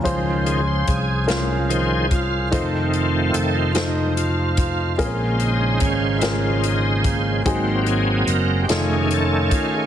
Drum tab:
HH |xxxxxx|xxxxxx|xxxxxx|xxxxxx|
SD |---o--|---o--|---o--|---o--|
BD |o-o--o|o----o|o-o--o|o----o|